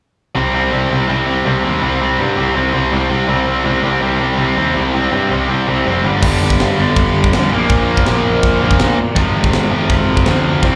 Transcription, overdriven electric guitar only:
0.35 0.53 C3 medium
0.35 0.53 G3 medium
0.35 0.54 C4 loud
0.53 0.71 C3 medium
0.53 0.71 G3 medium
0.53 0.72 C4 medium
0.71 0.89 C3 loud
0.71 0.90 G3 medium
0.71 0.91 C4 loud
0.90 1.07 C3 medium
0.90 1.08 G3 medium
0.90 1.08 C4 medium
1.08 1.26 C3 medium
1.08 1.26 G3 loud
1.08 1.27 C4 loud
1.26 1.45 C3 medium
1.26 1.45 G3 medium
1.26 1.46 C4 medium
1.45 1.63 C3 medium
1.45 1.65 G3 medium
1.45 1.65 C4 loud
1.64 1.82 C3 medium
1.64 1.83 G3 medium
1.64 1.83 C4 medium
1.82 2.01 C3 medium
1.82 2.01 G3 medium
1.82 2.02 C4 loud
2.01 2.18 C3 medium
2.01 2.19 G3 medium
2.01 2.19 C4 medium
2.19 2.36 C3 medium
2.19 2.37 G3 loud
2.19 2.38 C4 loud
2.37 2.55 C3 medium
2.37 2.55 G3 medium
2.37 2.56 C4 medium
2.56 2.72 C3 medium
2.56 2.74 G3 loud
2.56 2.74 C4 loud
2.73 2.91 C3 medium
2.73 2.92 G3 medium
2.73 2.92 C4 medium
2.91 3.10 C3 medium
2.91 3.10 G3 medium
2.91 3.11 C4 medium
3.10 3.28 C3 medium
3.10 3.28 G3 medium
3.10 3.28 C4 medium
3.28 3.46 C3 medium
3.28 3.47 G3 loud
3.28 3.48 C4 loud
3.47 3.64 C3 medium
3.47 3.65 G3 medium
3.47 3.66 C4 loud
3.65 3.82 C3 loud
3.65 3.83 G3 loud
3.65 3.83 C4 medium
3.83 4.00 C3 medium
3.83 4.02 G3 medium
3.83 4.02 C4 medium
4.01 4.19 C3 medium
4.01 4.20 G3 medium
4.01 4.20 C4 loud
4.20 4.37 C3 medium
4.20 4.39 G3 medium
4.20 4.38 C4 loud
4.38 4.55 C3 medium
4.38 4.56 G3 medium
4.38 4.56 C4 loud
4.56 4.74 C3 medium
4.56 4.75 G3 loud
4.56 4.75 C4 loud
4.75 4.92 C3 medium
4.75 4.93 G3 loud
4.75 4.94 C4 loud
4.94 5.10 C3 medium
4.94 5.11 G3 medium
4.94 5.11 C4 loud
5.11 5.29 C3 medium
5.11 5.30 G3 loud
5.11 5.30 C4 loud
5.30 5.47 C3 medium
5.30 5.48 G3 medium
5.30 5.48 C4 medium
5.48 5.66 C3 medium
5.48 5.67 G3 loud
5.48 5.67 C4 medium
5.67 5.84 C3 medium
5.67 5.85 G3 medium
5.67 5.85 C4 medium
5.85 6.03 C3 medium
5.85 6.02 G3 medium
5.85 6.03 C4 loud
6.03 6.19 G2 medium
6.03 6.21 D3 loud
6.03 6.21 G3 loud
6.20 6.76 G2 medium
6.20 6.77 D3 medium
6.20 6.76 G3 loud
6.77 7.31 G2 medium
6.77 7.32 D3 medium
6.77 7.31 G3 loud
7.32 7.50 G2 medium
7.32 7.51 D3 medium
7.32 7.51 G3 medium
7.51 8.03 A#2 loud
7.51 8.06 F3 medium
7.51 8.06 A#3 loud
8.05 8.59 A#2 medium
8.05 8.60 F3 medium
8.05 8.59 A#3 medium
8.61 8.98 A#2 medium
8.61 8.97 F3 medium
8.61 8.96 A#3 medium
9.15 9.70 F2 loud
9.15 9.70 C3 loud
9.15 9.69 F3 loud
9.70 10.25 F2 medium
9.70 10.26 C3 medium
9.70 10.25 F3 medium
10.26 10.62 F2 medium
10.26 10.61 C3 medium
10.26 10.63 F3 loud
10.62 10.75 C3 loud
10.62 10.75 G3 loud
10.62 10.75 C4 loud

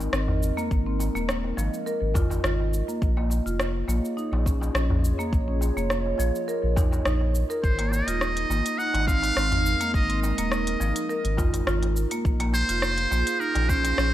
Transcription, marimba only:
0.13 0.28 C4 medium
0.57 0.65 A#3 loud
0.86 0.99 C4 medium
1.15 1.56 A#3 medium
1.57 1.85 F3 medium
1.86 2.14 A#4 medium
2.15 2.43 F4 medium
2.44 2.53 F4 medium
2.88 3.02 A#3 medium
3.17 3.30 A#3 medium
3.46 3.59 F4 medium
3.88 4.03 A#3 medium
4.17 4.45 D#4 medium
4.46 4.61 C#4 medium
4.75 4.90 C#4 medium
5.19 5.27 A#3 loud
5.48 5.61 C#4 medium
5.77 6.18 A#3 medium
6.19 6.47 F3 medium
6.48 6.62 A#4 medium
6.77 6.91 D#4 medium
7.06 7.20 D#4 medium
7.50 7.63 A#4 loud
7.79 7.91 A#3 medium
8.08 8.20 F4 medium
8.50 8.65 A#3 medium
8.79 9.06 D#4 medium
9.07 9.22 C4 medium
9.36 9.51 C4 medium
9.81 9.88 A#3 loud
10.09 10.22 C4 medium
10.38 10.79 A#3 medium
10.81 11.08 F3 medium
11.10 11.37 A#4 medium
11.38 11.66 F4 loud
11.67 11.76 F4 medium
12.11 12.25 A#3 medium
12.40 12.53 A#3 loud
12.69 12.82 F4 medium
13.11 13.26 A#3 medium
13.40 13.68 D#4 medium
13.69 13.84 C#4 medium
13.98 14.13 C#4 medium

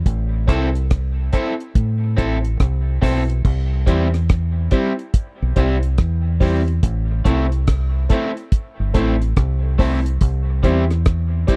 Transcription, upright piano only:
0.47 0.68 C4 medium
0.47 0.68 E4 medium
0.47 0.69 A4 medium
0.47 0.69 C5 medium
1.32 1.53 C4 medium
1.32 1.53 E4 medium
1.32 1.53 A4 medium
1.32 1.54 C5 medium
2.17 2.38 C4 medium
2.17 2.38 E4 medium
2.17 2.38 A4 medium
2.17 2.38 C5 loud
3.02 3.22 C4 medium
3.02 3.23 E4 medium
3.02 3.23 A4 medium
3.02 3.23 C5 loud
3.86 4.07 C4 medium
3.86 4.07 E4 medium
3.86 4.08 G4 medium
3.86 4.08 C5 loud
4.71 4.92 C4 medium
4.71 4.92 E4 medium
4.71 4.92 G4 medium
4.71 4.92 C5 loud
5.56 5.76 C4 medium
5.56 5.77 E4 medium
5.56 5.77 G4 medium
5.56 5.77 C5 loud
6.40 6.61 C4 loud
6.40 6.61 E4 medium
6.40 6.61 G4 medium
6.40 6.61 C5 loud
7.25 7.46 C4 medium
7.25 7.46 E4 medium
7.25 7.46 A4 medium
7.25 7.46 C5 medium
8.09 8.30 C4 medium
8.09 8.30 E4 medium
8.09 8.30 A4 medium
8.09 8.31 C5 loud
8.94 9.14 C4 medium
8.94 9.15 E4 medium
8.94 9.15 A4 medium
8.94 9.15 C5 loud
9.63 9.70 A4 soft
9.63 9.70 C5 soft
9.79 9.99 C4 medium
9.79 10.00 E4 loud
9.79 10.00 A4 medium
9.79 10.00 C5 loud
10.63 10.84 C4 medium
10.63 10.84 E4 medium
10.63 10.84 G4 medium
10.63 10.85 C5 medium
11.47 11.56 C4 medium
11.47 11.56 E4 medium
11.47 11.56 G4 medium
11.47 11.56 C5 loud

